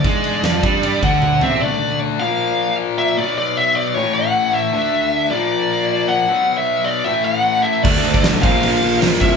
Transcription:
0.00 1.56 D4 medium
0.00 1.18 D5 loud
0.00 1.58 F#5 medium
0.00 1.57 A5 medium
0.04 0.41 G#2 medium
0.04 0.44 G#3 loud
0.04 kick medium
0.04 ride medium
0.24 ride medium
0.43 0.62 F2 medium
0.43 0.63 F3 loud
0.43 snare loud
0.43 ride medium
0.63 1.00 G2 medium
0.63 1.02 G3 loud
0.63 kick loud
0.63 ride medium
0.83 ride medium
1.03 1.39 D2 medium
1.03 1.42 D3 loud
1.03 1.43 F#5 loud
1.03 kick medium
1.03 ride medium
1.22 high tom medium
1.41 1.60 C3 medium
1.41 1.61 C4 loud
1.41 1.61 E5 loud
1.41 floor tom medium
1.61 2.18 D3 medium
1.61 2.19 A3 loud
1.61 2.20 D4 loud
1.61 1.98 D5 loud
2.19 3.16 A#2 medium
2.19 3.17 F3 loud
2.19 3.18 A#3 loud
2.19 2.74 F5 loud
2.98 3.16 E5 loud
3.17 3.94 B2 loud
3.17 3.95 F#3 loud
3.17 3.96 B3 loud
3.17 3.37 D5 loud
3.38 3.57 D5 medium
3.57 3.75 E5 loud
3.76 3.94 D5 loud
3.94 4.72 A2 loud
3.94 4.73 E3 loud
3.94 4.73 A3 loud
3.94 4.15 C#5 loud
4.14 4.54 F#5 loud
4.54 5.31 E5 loud
4.73 5.30 D3 loud
4.73 5.31 A3 loud
4.73 5.32 D4 loud
5.31 6.27 A#2 medium
5.31 6.29 F3 medium
5.31 6.30 A#3 loud
5.31 6.12 D5 loud
6.08 6.57 F#5 loud
6.28 7.05 B2 medium
6.28 7.06 F#3 loud
6.28 7.07 B3 loud
6.57 6.88 E5 loud
6.84 7.04 D5 loud
7.04 7.83 A2 medium
7.04 7.84 E3 loud
7.04 7.24 E5 medium
7.09 7.85 A3 loud
7.24 7.65 F#5 loud
7.63 7.83 E5 medium
7.83 8.02 D2 medium
7.83 8.42 D3 loud
7.83 8.43 A3 loud
7.83 8.42 D4 medium
7.83 8.43 A4 medium
7.83 8.23 D5 loud
7.83 8.43 E5 medium
7.83 kick loud
7.83 crash loud
7.88 8.44 D4 loud
8.04 8.22 D2 loud
8.04 crash medium
8.14 kick medium
8.24 8.41 B1 medium
8.24 snare loud
8.24 crash medium
8.42 8.61 A#1 medium
8.42 9.37 A#2 medium
8.42 9.37 F3 loud
8.42 9.37 A#3 medium
8.42 9.37 F4 medium
8.42 9.37 C5 medium
8.42 8.97 F5 loud
8.42 kick loud
8.42 crash medium
8.46 9.37 A#3 loud
8.63 8.80 A#1 loud
8.63 crash medium
8.82 8.99 A#1 loud
8.82 crash medium
9.01 9.19 A#1 loud
9.01 9.37 A#2 medium
9.01 9.37 F3 loud
9.01 9.37 A#3 medium
9.01 snare loud
9.01 crash loud
9.21 9.37 C2 medium
9.21 9.37 E5 loud
9.21 kick medium
9.21 crash medium

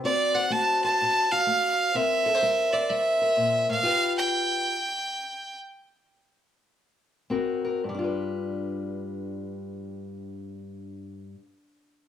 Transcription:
0.04 0.48 D3 medium
0.04 1.94 C4 medium
0.04 0.50 F#4 medium
0.04 0.35 C5 medium
0.04 0.36 D5 loud
0.35 0.84 C5 medium
0.35 0.53 F#5 medium
0.50 0.95 A3 medium
0.50 1.30 F#4 medium
0.50 0.83 A5 loud
0.84 1.93 C5 medium
0.84 1.33 A5 loud
1.01 1.44 A2 medium
1.32 1.93 F#4 medium
1.32 1.97 F5 loud
1.47 1.91 A3 medium
1.94 2.38 C3 medium
1.94 3.83 C4 medium
1.94 2.41 A#4 medium
1.94 2.26 C5 medium
1.94 2.74 E5 loud
2.26 2.35 A4 medium
2.35 2.72 C5 medium
2.42 2.86 G3 medium
2.42 3.20 A#4 medium
2.73 3.82 C5 medium
2.73 2.91 D5 medium
2.90 3.34 G3 medium
2.90 3.68 E5 medium
3.22 3.83 A#4 medium
3.37 3.68 A#2 medium
3.69 3.82 A2 medium
3.69 4.13 F5 loud
3.83 4.24 G2 medium
3.83 4.75 F4 medium
3.83 4.75 G4 medium
3.83 4.66 B4 medium
4.18 5.57 G5 medium
7.30 7.79 G#2 medium
7.30 7.83 C4 medium
7.30 7.81 F#4 medium
7.30 7.63 A#4 medium
7.65 7.80 A#4 medium
7.84 11.34 G2 medium
7.89 11.39 G3 medium
7.95 11.45 D4 medium
7.99 11.49 F4 medium
8.04 11.54 B4 medium

